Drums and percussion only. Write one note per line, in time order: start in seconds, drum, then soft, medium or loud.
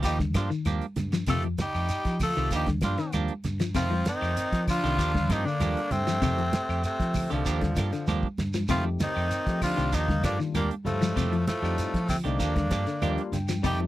0.03 kick medium
0.03 snare soft
0.03 closed hi-hat medium
0.03 shekere medium
0.19 kick medium
0.19 snare soft
0.19 high conga medium
0.34 kick medium
0.34 snare medium
0.34 closed hi-hat medium
0.34 high conga loud
0.34 claves medium
0.34 shekere loud
0.51 shekere soft
0.65 closed hi-hat medium
0.65 high conga medium
0.65 claves medium
0.65 shekere medium
0.82 closed hi-hat soft
0.96 snare soft
0.96 closed hi-hat soft
0.96 high conga medium
0.96 low conga medium
0.96 shekere soft
1.12 snare medium
1.12 closed hi-hat soft
1.12 shekere medium
1.26 kick loud
1.26 snare soft
1.26 closed hi-hat medium
1.26 low conga medium
1.26 claves medium
1.26 shekere medium
1.43 closed hi-hat soft
1.58 snare medium
1.58 closed hi-hat medium
1.58 high conga loud
1.58 low conga medium
1.58 shekere medium
1.75 snare soft
1.75 claves medium
1.75 shekere soft
1.89 closed hi-hat medium
1.89 shekere medium
2.05 kick medium
2.05 snare soft
2.05 closed hi-hat soft
2.20 kick medium
2.20 open hi-hat medium
2.20 low conga medium
2.20 claves medium
2.20 shekere medium
2.36 snare soft
2.36 closed hi-hat soft
2.36 shekere soft
2.51 kick medium
2.51 closed hi-hat medium
2.51 shekere medium
2.66 kick medium
2.66 snare soft
2.66 closed hi-hat soft
2.66 high conga medium
2.81 kick medium
2.81 snare medium
2.81 closed hi-hat medium
2.81 high conga loud
2.81 claves medium
2.81 shekere medium
2.98 snare soft
2.98 closed hi-hat soft
2.98 shekere soft
3.12 closed hi-hat medium
3.12 high conga medium
3.12 claves medium
3.12 shekere medium
3.28 closed hi-hat soft
3.44 snare soft
3.44 closed hi-hat medium
3.44 low conga medium
3.44 shekere soft
3.60 snare medium
3.60 closed hi-hat soft
3.60 high conga medium
3.60 shekere medium
3.74 kick medium
3.74 closed hi-hat medium
3.74 claves medium
3.74 shekere medium
3.92 high conga medium
4.05 snare medium
4.05 closed hi-hat medium
4.05 high conga loud
4.05 shekere medium
4.22 snare soft
4.22 claves medium
4.22 shekere soft
4.37 closed hi-hat medium
4.37 shekere medium
4.52 kick medium
4.52 snare soft
4.52 closed hi-hat soft
4.67 kick medium
4.67 open hi-hat medium
4.67 low conga medium
4.67 claves medium
4.67 shekere medium
4.84 snare soft
4.84 closed hi-hat soft
4.84 shekere soft
4.99 kick medium
4.99 snare soft
4.99 closed hi-hat medium
4.99 shekere medium
5.15 kick medium
5.15 snare soft
5.15 high conga medium
5.30 kick medium
5.30 snare medium
5.30 closed hi-hat medium
5.30 high conga medium
5.30 claves medium
5.30 shekere medium
5.48 shekere soft
5.60 closed hi-hat medium
5.60 high conga medium
5.60 claves medium
5.60 shekere medium
5.77 closed hi-hat soft
5.91 closed hi-hat medium
5.91 high conga medium
5.91 low conga medium
5.91 shekere soft
6.07 snare medium
6.07 closed hi-hat soft
6.07 shekere medium
6.22 kick loud
6.22 closed hi-hat medium
6.22 low conga medium
6.22 claves medium
6.22 shekere medium
6.38 closed hi-hat soft
6.53 snare medium
6.53 closed hi-hat medium
6.53 high conga loud
6.53 shekere medium
6.69 snare soft
6.69 claves medium
6.69 shekere soft
6.84 closed hi-hat medium
6.84 shekere medium
7.00 kick medium
7.00 snare soft
7.00 closed hi-hat soft
7.14 kick medium
7.14 open hi-hat medium
7.14 low conga medium
7.14 claves medium
7.14 shekere medium
7.31 closed hi-hat soft
7.31 shekere soft
7.46 kick medium
7.46 snare soft
7.46 closed hi-hat medium
7.46 shekere medium
7.61 kick medium
7.61 snare soft
7.61 closed hi-hat soft
7.61 high conga medium
7.76 kick medium
7.76 snare medium
7.76 closed hi-hat medium
7.76 high conga loud
7.76 claves medium
7.76 shekere medium
7.92 snare soft
7.92 closed hi-hat soft
7.92 shekere soft
8.07 snare medium
8.07 high conga medium
8.07 claves medium
8.07 shekere medium
8.23 kick medium
8.38 snare medium
8.38 high conga medium
8.38 low conga medium
8.38 shekere soft
8.53 snare medium
8.53 high conga medium
8.53 shekere medium
8.68 kick loud
8.68 closed hi-hat medium
8.68 low conga medium
8.68 claves medium
8.68 shekere medium
9.00 snare medium
9.00 closed hi-hat medium
9.00 high conga loud
9.00 low conga medium
9.00 shekere medium
9.17 claves medium
9.17 shekere soft
9.31 closed hi-hat medium
9.31 shekere medium
9.47 kick medium
9.47 snare soft
9.47 closed hi-hat soft
9.62 kick medium
9.62 open hi-hat medium
9.62 low conga medium
9.62 claves medium
9.62 shekere medium
9.78 closed hi-hat soft
9.78 shekere soft
9.92 kick medium
9.92 closed hi-hat medium
9.92 shekere medium
10.09 kick medium
10.09 snare soft
10.09 high conga medium
10.24 kick medium
10.24 snare medium
10.24 closed hi-hat medium
10.24 high conga loud
10.24 claves medium
10.24 shekere medium
10.40 snare soft
10.40 shekere soft
10.55 closed hi-hat medium
10.55 high conga medium
10.55 claves medium
10.55 shekere medium
10.71 closed hi-hat soft
10.86 closed hi-hat soft
10.86 low conga medium
10.86 shekere soft
11.02 snare medium
11.02 closed hi-hat soft
11.02 high conga medium
11.02 shekere medium
11.17 kick loud
11.17 closed hi-hat medium
11.17 claves medium
11.17 shekere medium
11.33 closed hi-hat soft
11.47 snare medium
11.47 closed hi-hat medium
11.47 high conga medium
11.47 shekere medium
11.64 snare soft
11.64 claves medium
11.64 shekere soft
11.78 closed hi-hat medium
11.78 shekere medium
11.94 kick medium
11.94 snare soft
11.94 closed hi-hat soft
12.08 kick medium
12.08 open hi-hat medium
12.08 low conga medium
12.08 claves medium
12.08 shekere medium
12.25 closed hi-hat soft
12.25 shekere soft
12.40 kick medium
12.40 closed hi-hat medium
12.40 shekere medium
12.56 kick medium
12.56 snare soft
12.56 closed hi-hat soft
12.56 high conga medium
12.71 kick medium
12.71 snare medium
12.71 closed hi-hat soft
12.71 high conga medium
12.71 claves medium
12.71 shekere medium
12.87 snare soft
12.87 closed hi-hat soft
12.87 shekere soft
13.02 closed hi-hat medium
13.02 high conga medium
13.02 claves medium
13.02 shekere medium
13.18 closed hi-hat soft
13.33 snare soft
13.33 closed hi-hat soft
13.33 low conga medium
13.33 shekere soft
13.48 snare medium
13.48 closed hi-hat soft
13.48 high conga medium
13.48 shekere medium
13.64 kick loud
13.64 closed hi-hat medium
13.64 claves medium
13.64 shekere medium
13.80 high conga medium